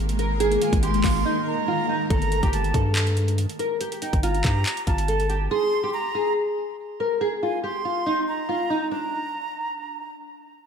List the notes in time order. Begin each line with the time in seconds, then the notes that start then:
Already playing: G#1 D#3 G#3 A#3 G#4 A#4
0.09 closed hi-hat
0.19 A#4, closed hi-hat
0.40 G#4, closed hi-hat
0.52 closed hi-hat
0.61 F4 G#5, closed hi-hat
0.73 G#1, kick, closed hi-hat
0.83 G4 C6, closed hi-hat
0.94 closed hi-hat
1.04 G#1 F4, kick, clap, open hi-hat
1.25 D#4
1.47 A#5
1.68 F4
1.89 D#4
2.10 G1 A4 A#5, kick, closed hi-hat
2.22 closed hi-hat
2.32 closed hi-hat
2.43 G1 G4, kick, closed hi-hat
2.53 A5, closed hi-hat
2.64 closed hi-hat
2.74 G2 A4, kick, closed hi-hat
2.96 clap, closed hi-hat
3.07 closed hi-hat
3.17 closed hi-hat
3.28 closed hi-hat
3.38 closed hi-hat
3.49 closed hi-hat
3.59 A#4, closed hi-hat
3.81 G4, closed hi-hat
3.92 closed hi-hat
4.02 D#4 G5, closed hi-hat
4.13 G1, kick, closed hi-hat
4.23 F4 A#5, closed hi-hat
4.34 closed hi-hat
4.44 G2 G4, kick, clap, closed hi-hat
4.66 clap, closed hi-hat
4.77 closed hi-hat
4.87 G1 F4 A5, kick, closed hi-hat
4.98 closed hi-hat
5.08 A4, closed hi-hat
5.20 closed hi-hat
5.29 G4, closed hi-hat
5.50 G#4 C6
5.83 G4
5.93 A#5
6.15 G#4
7.00 A#4
7.21 G#4
7.42 F4 G#5
7.63 G4 C6
7.85 F4
8.06 D#4
8.28 A#5
8.49 F4
8.70 D#4
8.91 D4 A#5